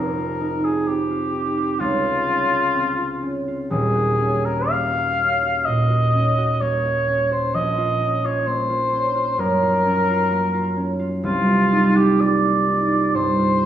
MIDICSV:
0, 0, Header, 1, 3, 480
1, 0, Start_track
1, 0, Tempo, 931677
1, 931, Tempo, 961538
1, 1883, Time_signature, 4, 2, 24, 8
1, 3331, Tempo, 920245
1, 5731, Tempo, 988468
1, 6211, Tempo, 944882
1, 6948, End_track
2, 0, Start_track
2, 0, Title_t, "Cor anglais"
2, 0, Program_c, 0, 69
2, 0, Note_on_c, 0, 70, 77
2, 329, Note_on_c, 0, 68, 65
2, 337, Note_off_c, 0, 70, 0
2, 451, Note_on_c, 0, 67, 78
2, 458, Note_off_c, 0, 68, 0
2, 925, Note_on_c, 0, 65, 96
2, 932, Note_off_c, 0, 67, 0
2, 1743, Note_off_c, 0, 65, 0
2, 1882, Note_on_c, 0, 68, 82
2, 2249, Note_on_c, 0, 70, 79
2, 2257, Note_off_c, 0, 68, 0
2, 2371, Note_on_c, 0, 77, 97
2, 2378, Note_off_c, 0, 70, 0
2, 2848, Note_on_c, 0, 75, 90
2, 2856, Note_off_c, 0, 77, 0
2, 3327, Note_on_c, 0, 73, 84
2, 3334, Note_off_c, 0, 75, 0
2, 3695, Note_off_c, 0, 73, 0
2, 3697, Note_on_c, 0, 72, 83
2, 3816, Note_on_c, 0, 75, 106
2, 3824, Note_off_c, 0, 72, 0
2, 4185, Note_on_c, 0, 73, 81
2, 4193, Note_off_c, 0, 75, 0
2, 4301, Note_on_c, 0, 72, 99
2, 4308, Note_off_c, 0, 73, 0
2, 4782, Note_on_c, 0, 70, 108
2, 4790, Note_off_c, 0, 72, 0
2, 5593, Note_off_c, 0, 70, 0
2, 5739, Note_on_c, 0, 65, 92
2, 6091, Note_on_c, 0, 67, 92
2, 6098, Note_off_c, 0, 65, 0
2, 6212, Note_on_c, 0, 74, 100
2, 6220, Note_off_c, 0, 67, 0
2, 6692, Note_on_c, 0, 72, 109
2, 6699, Note_off_c, 0, 74, 0
2, 6948, Note_off_c, 0, 72, 0
2, 6948, End_track
3, 0, Start_track
3, 0, Title_t, "Harp"
3, 0, Program_c, 1, 46
3, 0, Note_on_c, 1, 29, 50
3, 0, Note_on_c, 1, 41, 56
3, 0, Note_on_c, 1, 63, 46
3, 0, Note_on_c, 1, 65, 48
3, 86, Note_off_c, 1, 65, 0
3, 92, Note_on_c, 1, 65, 50
3, 204, Note_off_c, 1, 63, 0
3, 210, Note_on_c, 1, 63, 50
3, 322, Note_off_c, 1, 65, 0
3, 328, Note_on_c, 1, 65, 49
3, 447, Note_on_c, 1, 60, 44
3, 564, Note_off_c, 1, 65, 0
3, 570, Note_on_c, 1, 65, 44
3, 683, Note_off_c, 1, 63, 0
3, 689, Note_on_c, 1, 63, 40
3, 802, Note_off_c, 1, 65, 0
3, 808, Note_on_c, 1, 65, 46
3, 928, Note_on_c, 1, 37, 61
3, 947, Note_off_c, 1, 29, 0
3, 948, Note_off_c, 1, 63, 0
3, 950, Note_off_c, 1, 41, 0
3, 1041, Note_off_c, 1, 65, 0
3, 1047, Note_on_c, 1, 65, 51
3, 1166, Note_on_c, 1, 61, 45
3, 1277, Note_off_c, 1, 65, 0
3, 1283, Note_on_c, 1, 65, 52
3, 1391, Note_off_c, 1, 60, 0
3, 1397, Note_on_c, 1, 60, 52
3, 1512, Note_off_c, 1, 65, 0
3, 1518, Note_on_c, 1, 65, 49
3, 1633, Note_off_c, 1, 61, 0
3, 1639, Note_on_c, 1, 61, 47
3, 1759, Note_off_c, 1, 65, 0
3, 1765, Note_on_c, 1, 65, 49
3, 1877, Note_on_c, 1, 27, 58
3, 1881, Note_on_c, 1, 39, 64
3, 1897, Note_off_c, 1, 60, 0
3, 1901, Note_off_c, 1, 37, 0
3, 1999, Note_on_c, 1, 66, 51
3, 2115, Note_off_c, 1, 61, 0
3, 2121, Note_on_c, 1, 61, 55
3, 2253, Note_off_c, 1, 66, 0
3, 2259, Note_on_c, 1, 66, 50
3, 2377, Note_on_c, 1, 58, 47
3, 2491, Note_off_c, 1, 66, 0
3, 2497, Note_on_c, 1, 66, 52
3, 2614, Note_off_c, 1, 61, 0
3, 2620, Note_on_c, 1, 61, 42
3, 2732, Note_off_c, 1, 66, 0
3, 2738, Note_on_c, 1, 66, 50
3, 2861, Note_on_c, 1, 46, 52
3, 2970, Note_off_c, 1, 66, 0
3, 2976, Note_on_c, 1, 66, 54
3, 3089, Note_off_c, 1, 61, 0
3, 3095, Note_on_c, 1, 61, 47
3, 3206, Note_off_c, 1, 66, 0
3, 3212, Note_on_c, 1, 66, 52
3, 3326, Note_off_c, 1, 58, 0
3, 3332, Note_on_c, 1, 58, 53
3, 3446, Note_off_c, 1, 66, 0
3, 3453, Note_on_c, 1, 66, 47
3, 3564, Note_off_c, 1, 61, 0
3, 3571, Note_on_c, 1, 61, 51
3, 3688, Note_off_c, 1, 66, 0
3, 3694, Note_on_c, 1, 66, 56
3, 3729, Note_off_c, 1, 65, 0
3, 3814, Note_on_c, 1, 34, 66
3, 3834, Note_off_c, 1, 27, 0
3, 3836, Note_off_c, 1, 39, 0
3, 3836, Note_off_c, 1, 66, 0
3, 3839, Note_off_c, 1, 46, 0
3, 3938, Note_on_c, 1, 65, 58
3, 4053, Note_off_c, 1, 61, 0
3, 4059, Note_on_c, 1, 61, 52
3, 4173, Note_off_c, 1, 65, 0
3, 4179, Note_on_c, 1, 65, 57
3, 4292, Note_off_c, 1, 58, 0
3, 4298, Note_on_c, 1, 58, 58
3, 4410, Note_off_c, 1, 65, 0
3, 4416, Note_on_c, 1, 65, 51
3, 4529, Note_off_c, 1, 61, 0
3, 4536, Note_on_c, 1, 61, 46
3, 4649, Note_off_c, 1, 65, 0
3, 4655, Note_on_c, 1, 65, 50
3, 4773, Note_on_c, 1, 42, 68
3, 4794, Note_off_c, 1, 34, 0
3, 4893, Note_off_c, 1, 65, 0
3, 4899, Note_on_c, 1, 65, 59
3, 5016, Note_off_c, 1, 61, 0
3, 5022, Note_on_c, 1, 61, 57
3, 5142, Note_off_c, 1, 65, 0
3, 5148, Note_on_c, 1, 65, 61
3, 5253, Note_off_c, 1, 58, 0
3, 5259, Note_on_c, 1, 58, 59
3, 5370, Note_off_c, 1, 65, 0
3, 5376, Note_on_c, 1, 65, 52
3, 5490, Note_off_c, 1, 61, 0
3, 5496, Note_on_c, 1, 61, 52
3, 5608, Note_off_c, 1, 65, 0
3, 5615, Note_on_c, 1, 65, 60
3, 5740, Note_on_c, 1, 36, 71
3, 5746, Note_off_c, 1, 42, 0
3, 5751, Note_off_c, 1, 61, 0
3, 5851, Note_off_c, 1, 65, 0
3, 5856, Note_on_c, 1, 65, 53
3, 5978, Note_on_c, 1, 63, 60
3, 6090, Note_off_c, 1, 65, 0
3, 6096, Note_on_c, 1, 65, 63
3, 6204, Note_off_c, 1, 58, 0
3, 6210, Note_on_c, 1, 58, 51
3, 6330, Note_off_c, 1, 65, 0
3, 6336, Note_on_c, 1, 65, 54
3, 6447, Note_off_c, 1, 63, 0
3, 6453, Note_on_c, 1, 63, 52
3, 6568, Note_off_c, 1, 65, 0
3, 6574, Note_on_c, 1, 65, 53
3, 6689, Note_on_c, 1, 43, 60
3, 6807, Note_off_c, 1, 65, 0
3, 6813, Note_on_c, 1, 65, 54
3, 6928, Note_off_c, 1, 63, 0
3, 6948, Note_off_c, 1, 36, 0
3, 6948, Note_off_c, 1, 43, 0
3, 6948, Note_off_c, 1, 58, 0
3, 6948, Note_off_c, 1, 65, 0
3, 6948, End_track
0, 0, End_of_file